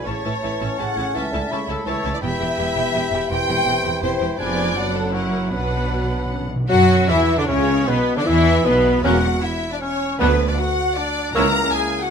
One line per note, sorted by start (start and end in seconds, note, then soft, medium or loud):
0.05 0.14 A1 medium
0.05 0.13 A2 medium
0.05 0.25 C#3 soft
0.05 2.19 A3 medium
0.05 0.13 C#4 medium
0.05 0.14 E4 soft
0.05 2.18 E4 medium
0.05 0.42 E4 soft
0.05 0.78 C#5 medium
0.05 0.78 A5 medium
0.05 0.14 A5 medium
0.05 0.42 C#6 soft
0.24 0.32 A1 medium
0.24 0.32 A2 soft
0.24 0.34 E3 soft
0.24 0.32 C#4 soft
0.24 0.32 E4 soft
0.24 0.32 A5 soft
0.42 0.50 A1 medium
0.42 0.50 A2 medium
0.42 0.79 E3 soft
0.42 0.49 C#4 soft
0.42 0.50 E4 medium
0.42 0.61 E4 medium
0.42 0.51 A5 soft
0.42 1.26 C#6 medium
0.60 0.68 A1 medium
0.60 0.68 A2 medium
0.60 0.68 C#4 soft
0.60 1.14 C#4 medium
0.60 0.68 E4 soft
0.60 0.68 A5 medium
0.78 0.86 A1 medium
0.78 0.86 A2 medium
0.78 1.17 C#3 medium
0.78 0.86 C#4 medium
0.78 0.86 E4 medium
0.78 1.15 F#5 medium
0.78 0.98 A5 medium
0.78 0.86 A5 soft
0.96 1.05 A1 medium
0.96 1.04 A2 medium
0.96 1.05 C#4 soft
0.96 1.05 E4 soft
0.96 1.16 G#5 medium
0.96 1.05 A5 soft
1.14 1.22 C#2 medium
1.14 1.23 C#2 medium
1.14 1.34 E3 medium
1.14 1.22 C#4 medium
1.14 1.54 C#4 medium
1.14 1.22 E4 medium
1.14 1.69 E5 medium
1.14 1.53 A5 medium
1.14 1.23 A5 medium
1.33 1.40 C#2 medium
1.33 1.41 C#2 medium
1.33 1.53 D3 medium
1.33 1.41 C#4 medium
1.33 1.40 E4 medium
1.33 1.41 A5 medium
1.51 1.58 C#2 medium
1.51 1.59 C#2 medium
1.51 1.86 C#3 medium
1.51 1.58 C#4 medium
1.51 1.59 E4 medium
1.51 1.86 E4 medium
1.51 1.59 A5 medium
1.51 1.86 B5 medium
1.51 1.69 C#6 medium
1.68 1.76 C#2 medium
1.68 1.76 C#4 soft
1.68 1.75 E4 medium
1.68 1.87 A4 medium
1.68 1.76 A5 medium
1.68 1.87 E6 medium
1.86 1.93 C#2 medium
1.86 1.94 C#2 medium
1.86 2.22 E3 medium
1.86 1.94 C#4 medium
1.86 2.22 E4 medium
1.86 1.94 E4 medium
1.86 2.13 C#5 medium
1.86 1.94 A5 medium
1.86 2.22 A5 medium
1.86 2.22 E6 medium
2.04 2.12 C#2 medium
2.04 2.11 C#4 medium
2.04 2.11 E4 medium
2.04 2.12 A5 medium
2.13 2.17 D5 medium
2.22 2.30 E1 medium
2.22 2.30 E2 medium
2.22 3.27 E3 medium
2.22 3.28 B3 medium
2.22 2.30 B3 medium
2.22 3.27 E4 medium
2.22 2.29 G4 medium
2.22 4.21 G4 medium
2.22 3.28 E5 loud
2.22 3.27 G5 medium
2.22 2.30 G5 medium
2.22 3.31 B5 medium
2.40 2.48 E1 medium
2.40 2.47 E2 medium
2.40 2.47 B3 medium
2.40 2.47 G4 medium
2.40 2.47 G5 medium
2.58 2.66 E1 medium
2.58 2.66 E2 medium
2.58 2.66 B3 medium
2.58 2.65 G4 medium
2.58 2.66 G5 medium
2.76 2.83 E1 medium
2.76 2.84 E2 medium
2.76 2.83 B3 medium
2.76 2.84 G4 medium
2.76 2.83 G5 medium
2.93 3.02 E1 medium
2.93 3.01 E2 medium
2.93 3.02 B3 medium
2.93 3.02 G4 medium
2.93 3.02 G5 medium
3.12 3.19 E1 medium
3.12 3.19 E2 medium
3.12 3.20 B3 medium
3.12 3.21 G4 medium
3.12 3.20 G5 medium
3.30 3.38 E1 medium
3.30 3.38 E2 medium
3.30 4.01 E3 medium
3.30 4.21 C4 medium
3.30 3.38 C4 medium
3.30 4.02 E4 medium
3.30 3.38 G4 medium
3.30 4.02 G5 loud
3.30 4.02 G5 medium
3.30 3.39 G5 medium
3.30 4.02 C6 medium
3.48 3.56 E1 medium
3.48 3.56 E2 medium
3.48 3.56 C4 medium
3.48 3.56 G4 medium
3.48 3.57 G5 medium
3.66 3.73 E1 medium
3.66 3.74 E2 medium
3.66 3.74 C4 medium
3.66 3.74 G4 medium
3.66 3.76 G5 medium
3.84 3.92 E1 medium
3.84 3.92 E2 medium
3.84 3.92 C4 medium
3.84 3.92 G4 medium
3.84 3.93 G5 medium
4.02 4.10 E1 medium
4.02 4.10 E2 medium
4.02 4.39 E3 medium
4.02 4.10 C4 medium
4.02 4.38 E4 medium
4.02 4.10 G4 medium
4.02 4.38 C5 medium
4.02 4.39 G5 medium
4.02 4.11 G5 medium
4.02 4.39 C6 medium
4.21 4.28 E1 medium
4.21 4.28 E2 medium
4.21 4.28 C4 medium
4.21 4.28 G4 medium
4.21 4.29 G5 medium
4.38 4.74 F1 medium
4.38 4.73 F2 medium
4.38 4.78 F3 medium
4.38 4.73 B3 medium
4.38 4.74 B3 medium
4.38 4.73 D4 medium
4.38 4.74 F4 medium
4.38 4.73 G#4 medium
4.38 4.94 D5 loud
4.38 4.78 G#5 medium
4.38 4.74 G#5 medium
4.38 4.74 B5 medium
4.75 5.52 F#1 medium
4.75 5.52 F#2 medium
4.75 5.14 F#3 medium
4.75 5.13 B3 medium
4.75 5.16 D4 medium
4.75 5.14 D4 medium
4.75 5.13 F#4 medium
4.75 5.13 F#5 medium
4.75 5.14 F#5 medium
4.75 5.15 B5 medium
4.95 5.14 A4 medium
5.13 5.52 F#3 medium
5.13 5.52 C#4 medium
5.13 5.52 E4 medium
5.13 5.52 A#4 medium
5.13 5.51 F#5 medium
5.13 5.51 C#6 medium
5.51 6.49 B1 medium
5.51 6.49 B2 medium
5.51 5.58 B2 soft
5.51 6.47 F#3 medium
5.51 6.49 B3 medium
5.51 5.87 B3 medium
5.51 6.49 D4 medium
5.51 6.47 D4 medium
5.51 5.87 D4 medium
5.51 6.28 B4 medium
5.51 6.47 F#5 medium
5.51 6.47 B5 medium
5.60 5.66 B2 soft
5.67 5.73 B2 soft
5.74 5.80 B2 soft
5.81 5.88 B2 soft
5.90 6.09 F#4 medium
5.96 6.02 B2 soft
6.04 6.10 B2 medium
6.11 6.18 B2 medium
6.11 6.29 D4 medium
6.20 6.25 B2 medium
6.26 6.33 B2 medium
6.26 6.48 C#4 medium
6.34 6.40 B2 medium
6.41 6.48 B2 medium
6.48 6.55 B2 medium
6.48 6.68 B3 medium
6.56 6.63 B2 medium
6.68 7.06 F#2 loud
6.68 7.06 F#3 medium
6.68 7.11 F#3 medium
6.68 7.06 F#4 medium
6.68 7.11 F#4 medium
6.68 7.06 F#4 medium
6.68 7.11 F#5 loud
6.68 7.06 F#5 medium
6.68 7.06 F#5 loud
7.08 7.38 E2 medium
7.08 7.16 E3 medium
7.08 7.39 E3 medium
7.08 7.22 E3 medium
7.08 7.38 E3 medium
7.08 7.38 E4 medium
7.08 7.39 E4 medium
7.08 7.38 E5 medium
7.08 7.16 E5 medium
7.37 7.48 D3 medium
7.37 7.47 D3 medium
7.37 7.48 D3 medium
7.37 7.48 D4 medium
7.37 7.49 D4 medium
7.37 7.43 D4 medium
7.37 7.43 D5 medium
7.37 7.48 D5 medium
7.37 7.43 D5 medium
7.47 7.86 C#2 medium
7.47 7.86 C#3 medium
7.47 7.89 C#3 medium
7.47 7.87 C#3 medium
7.47 7.86 C#4 medium
7.47 7.88 C#4 medium
7.47 7.86 C#5 loud
7.47 7.87 C#5 medium
7.47 7.90 C#5 medium
7.86 7.95 B1 medium
7.86 8.16 B2 medium
7.86 8.18 B2 medium
7.86 7.95 B2 medium
7.86 8.16 B3 medium
7.86 8.15 B3 medium
7.86 8.17 B3 medium
7.86 8.18 B4 medium
7.86 8.17 B4 loud
7.86 8.16 B4 medium
8.16 8.26 D3 medium
8.16 8.28 D3 medium
8.16 8.21 D3 medium
8.16 8.26 D3 medium
8.16 8.25 D4 medium
8.16 8.26 D4 medium
8.16 8.27 D4 medium
8.16 8.25 D5 medium
8.16 8.28 D5 medium
8.16 8.27 D5 medium
8.25 8.64 E2 medium
8.25 8.64 E3 medium
8.25 8.67 E3 medium
8.25 8.65 E3 medium
8.25 8.64 E4 medium
8.25 8.64 E5 medium
8.25 8.67 E5 medium
8.25 8.65 E5 loud
8.63 9.03 B1 medium
8.63 9.03 B2 medium
8.63 9.03 B3 medium
8.63 9.04 B3 medium
8.63 9.03 B3 medium
8.63 9.04 B4 medium
8.63 9.03 B4 medium
9.03 9.36 E1 medium
9.03 9.36 E2 medium
9.03 9.17 C#3 medium
9.03 9.22 F#3 medium
9.03 9.17 A#3 medium
9.03 9.22 A#3 medium
9.03 9.17 C#4 medium
9.03 9.22 C#4 medium
9.03 9.17 C#4 medium
9.03 9.17 F#4 medium
9.03 9.43 F#4 medium
9.03 9.18 A#4 medium
9.03 9.43 F#5 loud
9.03 9.22 F#6 medium
9.42 9.71 E4 medium
9.42 9.71 E5 medium
9.72 9.77 D4 medium
9.72 9.82 D5 medium
9.81 10.22 C#4 medium
9.81 10.19 C#5 loud
10.19 10.51 D2 medium
10.19 10.52 D2 medium
10.19 10.33 D3 medium
10.19 10.38 F#3 medium
10.19 10.33 B3 medium
10.19 10.38 B3 medium
10.19 10.50 B3 medium
10.19 10.38 D4 medium
10.19 10.33 F#4 medium
10.19 10.33 B4 medium
10.19 10.48 B4 loud
10.19 10.38 F#6 medium
10.48 10.58 D4 medium
10.48 10.58 D5 medium
10.57 10.99 F#4 loud
10.57 10.96 F#5 loud
10.95 11.35 D4 medium
10.95 11.35 D5 loud
11.34 11.67 C#2 medium
11.34 12.08 C#3 medium
11.34 11.53 E3 medium
11.34 11.48 A#3 medium
11.34 12.08 A#3 medium
11.34 12.08 C#4 medium
11.34 11.53 C#4 medium
11.34 12.08 E4 medium
11.34 11.53 E4 medium
11.34 11.73 A#4 loud
11.34 11.49 C#5 medium
11.34 11.72 A#5 loud
11.34 11.53 E6 medium
11.73 12.04 G#4 medium
11.73 12.02 G#5 loud
12.02 12.10 F#4 medium
12.02 12.10 F#5 medium